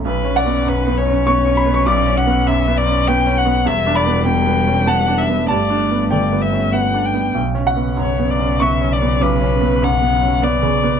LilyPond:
<<
  \new Staff \with { instrumentName = "Violin" } { \time 3/4 \key b \minor \tempo 4 = 98 b'8 d''8 b'8 cis''4. | d''8 fis''8 e''8 d''8 g''8 fis''8 | e''8 d''8 g''4 fis''8 e''8 | d''4 d''8 e''8 fis''8 g''8 |
r4 cis''8 d''8 e''8 d''8 | b'4 fis''4 d''4 | }
  \new Staff \with { instrumentName = "Grand piano" } { \time 3/4 \key b \minor r8 fis''4. cis'''8 b''16 cis'''16 | d'''2. | r8 b''4. a''4 | a''4 g''4 r4 |
r8 fis''4. cis'''4 | d'''2. | }
  \new Staff \with { instrumentName = "Grand piano" } { \time 3/4 \key b \minor \tuplet 3/2 { b,,8 cis'8 b8 fis,8 b8 cis'8 b8 cis'8 b8 } | \tuplet 3/2 { b,,8 cis'8 b8 fis,8 b8 cis'8 b8 cis'8 b8 } | \tuplet 3/2 { e,8 d'8 b8 b,8 b8 cis'8 b8 d'8 b8 } | \tuplet 3/2 { g,8 d'8 b8 d8 b8 cis'8 b8 d'8 b8 } |
\tuplet 3/2 { b,,8 cis'8 b8 fis,8 b8 cis'8 b8 cis'8 b8 } | \tuplet 3/2 { b,,8 cis'8 b8 fis,8 b8 cis'8 b8 cis8 b8 } | }
  \new Staff \with { instrumentName = "Cello" } { \clef bass \time 3/4 \key b \minor cis'2.~ | cis'2. | g2. | a2~ a8 r8 |
cis2.~ | cis2. | }
  \new Staff \with { instrumentName = "Double bass" } { \clef bass \time 3/4 \key b \minor b,,2.~ | b,,2. | e,,2. | g,,2. |
b,,2.~ | b,,2. | }
>>